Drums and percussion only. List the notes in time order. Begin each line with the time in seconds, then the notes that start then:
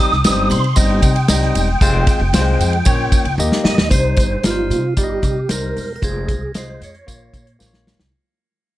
0.12 snare
0.24 snare, ride, tambourine
0.51 ride, tambourine
0.64 ride
0.76 kick, ride, tambourine
1.02 kick, ride, tambourine
1.16 ride
1.28 snare, ride, tambourine
1.42 snare
1.55 ride, tambourine
1.81 kick, ride, tambourine
2.07 kick, snare, ride, tambourine
2.34 snare, ride, tambourine
2.61 ride, tambourine
2.73 ride
2.85 kick, ride, tambourine
3.12 kick, ride, tambourine
3.25 ride
3.40 tambourine
3.52 snare
3.65 snare, tambourine
3.78 snare
3.91 kick, closed hi-hat, tambourine
4.17 kick, closed hi-hat, tambourine
4.44 snare, closed hi-hat, tambourine
4.71 closed hi-hat, tambourine
4.97 kick, closed hi-hat, tambourine
5.23 kick, closed hi-hat, tambourine
5.49 snare, closed hi-hat, tambourine
5.77 open hi-hat, tambourine
6.03 kick, closed hi-hat, tambourine
6.29 kick, closed hi-hat, tambourine
6.54 snare, closed hi-hat, tambourine
6.82 closed hi-hat, tambourine
6.95 closed hi-hat
7.08 kick, closed hi-hat, tambourine
7.34 kick, closed hi-hat, tambourine
7.47 closed hi-hat
7.60 snare, tambourine
7.74 snare
7.87 snare, tambourine
8.00 snare